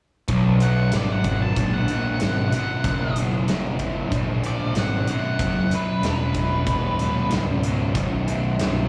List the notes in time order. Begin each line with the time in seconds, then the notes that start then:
0.28 B1 F#2, kick, closed hi-hat
0.60 B1 F#2 F#5, closed hi-hat
0.92 G#1 B1 F#2, snare, closed hi-hat
0.96 D5
1.12 F#5
1.24 B1 F#2, kick, closed hi-hat
1.42 A5
1.56 A#1 B1 G#2, kick, closed hi-hat
1.74 F#5
1.88 B1 G#2, closed hi-hat
2.20 G#1 B1 F#2, snare, closed hi-hat
2.52 B1 F#2 F#5, muted picked electric bass stroke, closed hi-hat
2.84 F#1 B1 F#2, kick, closed hi-hat
3.16 B1 F#2, closed hi-hat
3.48 F#1 B1 F#2, snare, closed hi-hat
3.79 B1 F#2, kick, closed hi-hat
4.12 A#1 B1 G#2, kick, closed hi-hat
4.44 B1 G#2 D5, closed hi-hat
4.75 G#1 B1 F#2 F#5, snare, closed hi-hat
5.07 B1 F#2 F#5, muted picked electric bass stroke, closed hi-hat
5.39 F#1 B1 F#2, kick, closed hi-hat
5.71 B1 F#2 B4, muted picked electric bass stroke, closed hi-hat
6.02 E1 B1 F#2, snare, closed hi-hat
6.08 B4
6.34 B1 F#2, kick, closed hi-hat
6.66 D#1 B1 G#2, kick, closed hi-hat
6.98 B1 G#2, closed hi-hat
7.31 C#1 B1 F#2, snare, closed hi-hat
7.63 B1 F#2, closed hi-hat
7.95 B0 B1 F#2, kick, closed hi-hat
8.26 B1 F#2, closed hi-hat
8.59 C1 B1 F#2, snare, closed hi-hat